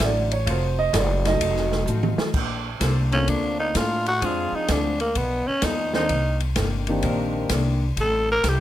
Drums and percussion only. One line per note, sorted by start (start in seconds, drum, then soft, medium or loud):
0.00 kick soft
0.00 snare medium
0.00 hi-hat pedal medium
0.00 ride medium
0.32 ride medium
0.47 kick soft
0.47 ride medium
0.94 kick soft
0.94 snare medium
0.94 hi-hat pedal medium
0.94 ride medium
1.25 snare medium
1.25 ride medium
1.40 kick soft
1.40 ride medium
1.56 snare soft
1.72 snare medium
1.87 hi-hat pedal medium
2.03 high tom medium
2.18 snare loud
2.34 kick medium
2.34 crash medium
2.81 kick soft
2.81 snare medium
2.81 hi-hat pedal medium
2.81 ride medium
3.12 ride soft
3.28 kick soft
3.28 ride medium
3.75 kick soft
3.75 snare medium
3.75 hi-hat pedal medium
3.75 ride medium
4.06 ride medium
4.22 kick soft
4.22 ride medium
4.68 kick soft
4.68 snare medium
4.68 hi-hat pedal medium
4.68 ride medium
5.00 ride medium
5.15 kick soft
5.15 ride medium
5.62 kick soft
5.62 snare medium
5.62 hi-hat pedal medium
5.62 ride medium
5.94 snare medium
6.09 kick soft
6.09 ride medium
6.40 ride medium
6.56 kick soft
6.56 snare medium
6.56 hi-hat pedal medium
6.56 ride medium
6.87 ride medium
7.03 kick soft
7.03 ride medium
7.49 kick soft
7.49 snare medium
7.49 hi-hat pedal medium
7.49 ride medium
7.97 kick soft
7.97 ride medium
8.44 kick soft
8.44 snare medium
8.44 hi-hat pedal medium
8.44 ride medium